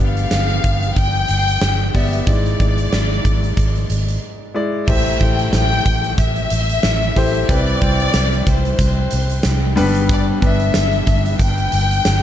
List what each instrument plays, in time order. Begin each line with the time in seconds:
Already playing: grand piano G2 B3 G4 D5
0.00 fingered electric bass G1, violin section F5
0.17 closed hi-hat
0.31 fingered electric bass G1, snare, closed hi-hat
0.50 closed hi-hat
0.64 fingered electric bass G1, kick, closed hi-hat
0.82 closed hi-hat
0.96 fingered electric bass G1, violin section G5, kick, closed hi-hat
1.15 closed hi-hat
1.28 fingered electric bass G1, closed hi-hat
1.48 closed hi-hat
1.61 fingered electric bass G1, snare, closed hi-hat
1.94 fingered electric bass G1, grand piano B3 G4 D5, violin section E5, kick, snare, open hi-hat
2.13 closed hi-hat
2.26 fingered electric bass G#1, grand piano G#2 G#3 E4 D5, violin section D5, kick, closed hi-hat
2.46 closed hi-hat
2.60 fingered electric bass G#1, kick, closed hi-hat
2.78 closed hi-hat
2.92 fingered electric bass G#1, snare, closed hi-hat
3.25 fingered electric bass G#1, kick, closed hi-hat
3.44 closed hi-hat
3.57 fingered electric bass G#1, kick, closed hi-hat
3.76 closed hi-hat
3.90 fingered electric bass G#1, closed hi-hat
4.08 closed hi-hat
4.54 grand piano G#3 E4 D5
4.88 fingered electric bass A1, grand piano A2 A3 E4 G4 C5, violin section E5, kick, crash, tambourine, impact
5.20 fingered electric bass A1, grand piano A3 E4 G4 C5, violin section G5, kick, closed hi-hat, tambourine
5.39 closed hi-hat
5.53 fingered electric bass A1, violin section G5, snare, closed hi-hat, tambourine
5.72 closed hi-hat
5.86 fingered electric bass A1, kick, closed hi-hat, tambourine
6.04 closed hi-hat
6.18 fingered electric bass A1, violin section E5, kick, closed hi-hat, tambourine
6.36 closed hi-hat
6.50 fingered electric bass A1, closed hi-hat, tambourine
6.69 closed hi-hat
6.83 fingered electric bass A1, snare, closed hi-hat, tambourine
7.02 closed hi-hat
7.16 fingered electric bass A1, grand piano A3 E4 G4 C5, kick, snare, open hi-hat, tambourine
7.35 closed hi-hat
7.48 fingered electric bass C2, grand piano C3 G3 C4 E4 B4, violin section D5, kick, closed hi-hat, tambourine
7.68 closed hi-hat
7.81 fingered electric bass C2, grand piano G3 C4 E4 C5, kick, closed hi-hat
8.00 closed hi-hat
8.14 fingered electric bass C2, snare, closed hi-hat, tambourine
8.33 closed hi-hat
8.47 fingered electric bass C2, violin section C5, kick, closed hi-hat, tambourine
8.65 closed hi-hat
8.79 fingered electric bass C2, kick, closed hi-hat, tambourine
9.11 fingered electric bass C2, closed hi-hat, tambourine
9.29 closed hi-hat
9.43 fingered electric bass C2, snare, closed hi-hat, tambourine
9.76 fingered electric bass G1, grand piano G2 G3 B3 D4 B4, snare, open hi-hat, tambourine
9.95 closed hi-hat
10.09 violin section D5, kick, closed hi-hat, tambourine
10.41 fingered electric bass G1, grand piano G3 B3 D4 B4, kick, closed hi-hat
10.45 violin section E5
10.60 closed hi-hat
10.74 fingered electric bass G1, snare, closed hi-hat, tambourine
10.93 closed hi-hat
11.07 fingered electric bass G1, kick, closed hi-hat, tambourine
11.26 closed hi-hat
11.39 fingered electric bass G1, violin section G5, kick, closed hi-hat, tambourine
11.57 closed hi-hat
11.72 fingered electric bass G1, closed hi-hat, tambourine
11.91 closed hi-hat
12.05 fingered electric bass G1, snare, closed hi-hat, tambourine